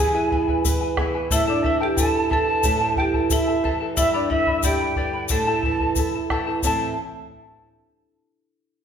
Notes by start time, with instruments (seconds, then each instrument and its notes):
Already playing: charango G#4, marimba G#4, quena G#5
0.00 nylon-string guitar E3, charango E4 B4 E5 G#5
0.14 charango E4 G#4 B4 E5 G#5
0.31 nylon-string guitar B3, charango E4 B4 E5 G#5, bombo low
0.48 charango E4 B4 G#5, bombo low
0.64 charango E4 B4 E5 G#5, nylon-string guitar B4, bombo low, shaker
0.81 charango E4 B4 G#5
0.97 nylon-string guitar B3, charango E4 G#4 B4 E5 G#5, bombo rim, bombo low
1.15 charango E4 B4 G#5
1.31 nylon-string guitar A2, charango E4 A4 C5 E5 A5, marimba E4, quena E5, bombo low, shaker
1.47 marimba D4, charango E4 A4 C5 E5 A5, quena D5
1.63 nylon-string guitar E3, charango E4 A4 E5 A5, marimba E4, quena E5, bombo low
1.80 charango E4 A4 A5, marimba G4, quena G5
1.95 nylon-string guitar E4, charango E4 A4 E5 A5, quena A5, bombo low, shaker
2.00 marimba A4
2.15 charango E4 A4 A5
2.30 nylon-string guitar E3, charango E4 A4 C5 E5 A5, marimba A4, quena A5, bombo low
2.48 charango E4 A4 A5
2.63 nylon-string guitar A2, charango E4 A4 C5 E5 A5, bombo low, shaker
2.81 charango E4 A4 C5 E5 A5
2.96 nylon-string guitar E3, charango E4 A4 E5 A5, marimba G4, quena G5, bombo low
3.14 charango E4 A4 A5, bombo low
3.30 nylon-string guitar E4, charango E4 A4 E5 A5, marimba E4, quena E5, bombo low, shaker
3.48 charango E4 A4 A5
3.63 nylon-string guitar E3, charango E4 A4 C5 E5 A5, bombo low
3.80 charango E4 A4 A5
3.96 nylon-string guitar G2, marimba E4, charango G4 B4 D5 G5 B5, quena E5, bombo low, shaker
4.13 marimba D4, charango G4 B4 D5 G5 B5, quena D5
4.29 nylon-string guitar D3, marimba E4, charango B4 D5 G5 B5, quena E5, bombo low
4.47 charango B4 D5 B5, bombo low
4.63 nylon-string guitar D4, marimba G4, charango B4 D5 G5 B5, quena G5, bombo low, shaker
4.81 charango B4 D5 B5
4.96 nylon-string guitar D3, charango G4 B4 D5 G5 B5, bombo low
5.13 charango B4 D5 B5
5.29 nylon-string guitar A2, charango E4 A4 C5 E5 A5, marimba A4, quena A5, bombo low, shaker
5.47 charango E4 A4 C5 E5 A5
5.63 nylon-string guitar E3, charango E4 A4 E5 A5, bombo low
5.80 charango E4 A4 A5, bombo low
5.96 nylon-string guitar E4, charango E4 A4 E5 A5, bombo low, shaker
6.15 charango E4 A4 A5
6.30 nylon-string guitar E3, charango E4 A4 C5 E5 A5, bombo rim, bombo low
6.47 charango E4 A4 A5
6.62 nylon-string guitar A2 E3 C4 E4 A4 E5, charango E4 A4 C5 E5, bombo low, shaker
6.67 charango A5